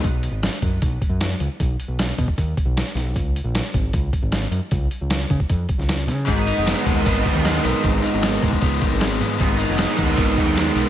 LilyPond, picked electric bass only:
\new Staff \with { instrumentName = "Picked electric bass" } { \clef bass \time 4/4 \key b \major \tempo 4 = 154 b,,8. gis,,8 r16 fis,8 b,,8 r16 fis,8. cis,16 r16 | b,,8 r16 b,,8. b,16 r16 dis,8 r16 b,,8 r16 b,,8 | cis,8. ais,,8 r16 gis,,8 cis,8 r16 gis,,8. fis,16 r16 | cis,8 r16 cis,8. cis16 r16 eis,8 r16 cis,8. cis8 |
gis,,8. eis,,8 r16 dis,8 gis,,8 r16 dis,8. b,,16 r16 | gis,,8 r16 gis,,8. gis,16 r16 cis,8 r16 gis,,8. gis,8 | gis,,8. eis,,8 r16 dis,8 gis,,8 r16 dis,8. b,,16 r16 | }